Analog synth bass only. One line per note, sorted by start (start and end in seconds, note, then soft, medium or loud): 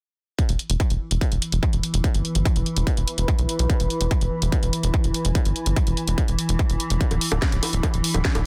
0.49 0.56 E1 medium
0.70 0.77 E1 medium
0.90 0.98 E1 medium
1.11 1.18 E1 medium
1.32 1.39 E1 medium
1.52 1.60 E1 medium
1.73 1.80 E1 medium
1.94 2.01 E1 medium
2.14 2.22 G1 medium
2.35 2.43 G1 medium
2.56 2.63 E1 medium
2.77 2.84 E1 medium
2.97 3.05 E1 medium
3.18 3.25 E1 medium
3.39 3.46 B1 medium
3.59 3.67 B1 medium
3.80 3.87 E1 medium
4.01 4.08 E1 medium
4.21 4.29 E1 medium
4.42 4.49 E1 medium
4.63 4.70 E1 medium
4.83 4.91 E1 medium
5.04 5.12 E1 medium
5.25 5.32 E1 medium
5.45 5.53 G1 medium
5.66 5.74 G1 medium
5.87 5.94 E1 medium
6.08 6.15 E1 medium
6.28 6.36 E1 medium
6.49 6.56 E1 medium
6.70 6.77 E1 medium
6.90 6.98 E1 medium
7.11 7.18 D1 medium
7.32 7.39 D1 medium
7.52 7.60 D1 medium
7.73 7.80 D1 medium
7.94 8.01 D1 medium
8.14 8.22 D1 medium
8.35 8.43 D1 medium